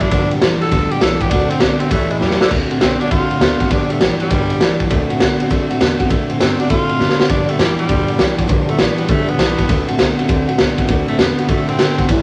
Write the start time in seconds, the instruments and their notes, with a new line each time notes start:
Already playing: clean electric guitar F#3
0.00 steel-string acoustic guitar G3 C#4 E4, tenor saxophone D4, kick, ride
0.11 upright bass G1, steel-string acoustic guitar G2 D3 F3 G3 B3 G4, kick, ride
0.31 steel-string acoustic guitar F3 G3 B3 G4, muted upright bass stroke, ride
0.42 upright bass F1, clean electric guitar G2 E3, steel-string acoustic guitar F3 G3 B3 G4, snare, ride
0.61 steel-string acoustic guitar F3 G3 B3 G4, tenor saxophone A4, muted upright bass stroke, ride
0.71 upright bass D2, steel-string acoustic guitar G2 D3 F3 G3 B3 G4, kick, ride
0.90 steel-string acoustic guitar F3 G3 B3 G4, tenor saxophone G4, ride
1.00 upright bass B1, clean electric guitar G2 E3, steel-string acoustic guitar F3 G3 B3 G4, tenor saxophone A4, snare, ride
1.20 steel-string acoustic guitar F3 G3 B3 G4, tenor saxophone G4, kick, ride
1.30 upright bass D2, steel-string acoustic guitar D3 A3 C4 F#4, tenor saxophone D4, kick, ride
1.50 steel-string acoustic guitar A3 C4 F#4, tenor saxophone C4, ride
1.60 upright bass C2, steel-string acoustic guitar D3 A3 C4 F#4, clean electric guitar B3, tenor saxophone D4, snare, ride
1.80 steel-string acoustic guitar A3 C4 F#4, tenor saxophone C4, ride
1.90 upright bass C#2, steel-string acoustic guitar A2 E3 G3 C#4 E4, tenor saxophone A3, kick, ride
2.10 steel-string acoustic guitar G3 C#4 E4, tenor saxophone G#3, ride
2.20 upright bass E2, clean electric guitar A2 F#3, steel-string acoustic guitar E3 G3 C#4 E4, tenor saxophone G3, snare
2.30 snare
2.40 tenor saxophone D3, steel-string acoustic guitar G3 C#4 E4, muted upright bass stroke, snare
2.51 upright bass D2, steel-string acoustic guitar D3 A3 C4 F#4, kick, crash
2.70 steel-string acoustic guitar A3 C4 F#4, ride
2.80 upright bass B1, steel-string acoustic guitar D3 A3 C4 F#4, clean electric guitar B3, tenor saxophone C4, snare, ride
3.00 steel-string acoustic guitar A3 C4 F#4, tenor saxophone D4, ride
3.11 upright bass C2, steel-string acoustic guitar D3 A3 C4 F#4, tenor saxophone F4, kick, ride
3.30 steel-string acoustic guitar A3 C4 F#4, muted upright bass stroke, ride
3.40 upright bass D2, steel-string acoustic guitar D3 A3 C4 F#4, clean electric guitar B3, snare, ride
3.59 steel-string acoustic guitar A3 C4 F#4, kick, ride
3.69 upright bass G1, steel-string acoustic guitar G2 D3 F3 G3 B3 G4, tenor saxophone D4, kick, ride
3.90 steel-string acoustic guitar F3 G3 B3 G4, tenor saxophone A3, muted upright bass stroke, ride
4.01 upright bass A1, clean electric guitar G2 E3, steel-string acoustic guitar F3 G3 B3 G4, tenor saxophone G3, snare, ride
4.20 steel-string acoustic guitar F3 G3 B3 G4, tenor saxophone G3, muted upright bass stroke, ride
4.30 upright bass B1, steel-string acoustic guitar G2 D3 F3 G3 B3 G4, kick, ride
4.50 steel-string acoustic guitar F3 G3 B3 G4, muted upright bass stroke, ride
4.60 upright bass C2, clean electric guitar G2 E3, steel-string acoustic guitar F3 G3 B3 G4, snare, ride
4.80 steel-string acoustic guitar F3 G3 B3 G4, kick, ride
4.90 upright bass D2, steel-string acoustic guitar D3 A3 C4 F#4, kick, ride
5.10 steel-string acoustic guitar A3 C4 F#4, ride
5.20 upright bass C2, steel-string acoustic guitar D3 A3 C4 F#4, clean electric guitar B3, snare, ride
5.39 steel-string acoustic guitar A3 C4 F#4, ride
5.50 steel-string acoustic guitar D3 A3 C4 F#4, kick, ride
5.69 steel-string acoustic guitar A3 C4 F#4, ride
5.79 upright bass E2, steel-string acoustic guitar D3 A3 C4 F#4, clean electric guitar B3, snare, ride
5.98 steel-string acoustic guitar A3 C4 F#4, kick, ride
6.09 steel-string acoustic guitar D3 A3 C4 F#4, kick, ride
6.28 steel-string acoustic guitar A3 C4 F#4, ride
6.39 upright bass G2, steel-string acoustic guitar D3 A3 C4 F#4, clean electric guitar B3, tenor saxophone C4, snare, ride
6.58 steel-string acoustic guitar A3 C4 F#4, tenor saxophone D4, ride
6.69 upright bass A2, steel-string acoustic guitar D3 A3 C4 F#4, tenor saxophone F4, kick, ride
6.89 steel-string acoustic guitar A3 C4 F#4, muted upright bass stroke, ride
6.99 upright bass F#2, steel-string acoustic guitar D3 A3 C4, clean electric guitar B3, snare
7.10 snare
7.19 steel-string acoustic guitar A3 C4 F#4, muted upright bass stroke, snare
7.29 steel-string acoustic guitar G2 D3 F3 G3 B3 G4, upright bass G2, tenor saxophone D4, kick, ride
7.49 steel-string acoustic guitar F3 G3 B3 G4, tenor saxophone A3, ride
7.58 upright bass F2, clean electric guitar G2 E3, steel-string acoustic guitar F3 G3 B3 G4, tenor saxophone G3, snare, ride
7.78 steel-string acoustic guitar F3 G3 B3 G4, tenor saxophone G3, ride
7.89 upright bass D2, steel-string acoustic guitar G2 D3 F3 G3 B3 G4, kick, ride
8.08 steel-string acoustic guitar F3 G3 B3 G4, ride
8.18 upright bass C2, clean electric guitar G2 E3, steel-string acoustic guitar F3 G3 B3 G4, snare, ride
8.37 steel-string acoustic guitar F3 G3 B3 G4, kick, ride
8.48 upright bass B1, steel-string acoustic guitar G2 D3 F3 G3 B3 G4, kick, ride
8.67 steel-string acoustic guitar F3 G3 B3 G4, tenor saxophone A3, ride
8.77 upright bass A1, clean electric guitar G2 E3, steel-string acoustic guitar F3 G3 B3, tenor saxophone B3, snare, ride
8.98 steel-string acoustic guitar F3 G3 B3 G4, muted upright bass stroke, ride
9.08 upright bass G1, steel-string acoustic guitar G2 D3 F3 G3 B3 G4, tenor saxophone A3, kick, ride
9.28 steel-string acoustic guitar F3 G3 B3 G4, tenor saxophone B3, ride
9.38 upright bass B1, clean electric guitar G2 E3, steel-string acoustic guitar F3 G3 B3, snare, ride
9.42 steel-string acoustic guitar G4
9.58 steel-string acoustic guitar F3 G3 B3 G4, kick, ride
9.68 upright bass D2, steel-string acoustic guitar D3 A3 C4 F#4, kick, ride
9.87 steel-string acoustic guitar A3 C4 F#4, ride
9.98 upright bass C2, steel-string acoustic guitar D3 A3 C4 F#4, clean electric guitar B3, snare, ride
10.17 steel-string acoustic guitar A3 C4 F#4, ride
10.28 upright bass D2, steel-string acoustic guitar D3 A3 C4 F#4, kick, ride
10.47 steel-string acoustic guitar A3 C4 F#4, ride
10.58 upright bass C2, steel-string acoustic guitar D3 A3 C4 F#4, clean electric guitar B3, snare, ride
10.77 steel-string acoustic guitar A3 C4 F#4, kick, ride
10.87 upright bass D2, steel-string acoustic guitar D3 A3 C4 F#4, kick, ride
11.07 tenor saxophone A3, steel-string acoustic guitar A3 C4 F#4, ride
11.18 upright bass E2, steel-string acoustic guitar D3 A3 C4 F#4, tenor saxophone B3, clean electric guitar B3, snare, ride
11.38 steel-string acoustic guitar A3 C4 F#4, muted upright bass stroke, ride
11.49 steel-string acoustic guitar D3 A3 C4 F#4, tenor saxophone A3, kick, ride
11.68 steel-string acoustic guitar A3 C4 F#4, tenor saxophone C4, ride
11.78 upright bass G2, steel-string acoustic guitar D3 A3 C4 F#4, clean electric guitar B3, snare, ride
11.98 steel-string acoustic guitar A3 C4 F#4, kick, ride
12.08 steel-string acoustic guitar A2 E3 G3 C#4 E4, upright bass A2, kick, ride